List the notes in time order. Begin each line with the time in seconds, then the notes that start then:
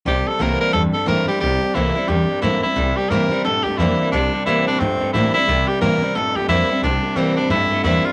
0.05 C2 C3 G3 G4
0.27 C3 G3 A4
0.39 C2 C3 E3 A3 A#3 C4 E4 A#4
0.60 C3 G3 A#4, muted upright bass stroke
0.72 E2 G2 C3 G3 A4
0.93 C3 G3 A4
1.06 G2 C3 E3 A3 A#3 C4 E4 A#4
1.27 C3 G3 C4 E4 G4, muted upright bass stroke
1.40 C2 C3 G3 G4
1.62 C3 G3, muted upright bass stroke
1.74 C2 C3 E3 A3 A#3 C4 E4
1.95 C3 G3 C4 E4, muted upright bass stroke
2.08 E2 G2 C3 G3 G4
2.29 C3 G3
2.42 G2 C3 E3 A3 A#3 C4 E4
2.62 C3 G3 C4 E4, muted upright bass stroke
2.76 C2 C3 G3
2.97 C3 G3 G4
3.10 G2 C3 E3 G3 A#3 C4 E4 A#4
3.31 C3 G3 C4 E4, muted upright bass stroke
3.44 G2 A#2 C3 A3 A4
3.63 G2 C3 A3 G4
3.78 F2 C3 E3 G3 A#3 C4 E4
4.00 C3 G3
4.12 C2 C3 G3 D4
4.33 C3 G3, muted upright bass stroke
4.46 G2 C3 E3 G3 A#3 C4 E4
4.67 A2 C3 G3 C4 D4 E4
4.80 G2 C3 A3 C4
5.01 C3 A3, muted upright bass stroke
5.13 A2 C3 E3 G3 A#3 C4 E4
5.34 C3 G3 C4 E4
5.47 C2 C3 G3
5.68 C3 G3 G4, muted upright bass stroke
5.81 G2 C3 E3 G3 A#3 C4 E4 A#4
6.01 C3 G3 C4 E4, muted upright bass stroke
6.15 G2 A#2 C3 A3 A4
6.35 G2 C3 A3 G4
6.48 F2 C3 E3 G3 A#3 C4 E4
6.69 C3 G3 C4 E4
6.82 C2 C3 G3 D4
7.02 C3 G3, muted upright bass stroke
7.15 G2 C3 E3 G3 A#3 C4 E4
7.36 A2 C3 G3 C4 D4 E4
7.49 G2 C3 A3 E4
7.70 C3 A3, muted upright bass stroke
7.83 E2 C3 E3 G3 A#3 C4 E4
8.04 C3 G3 C4 E4 F4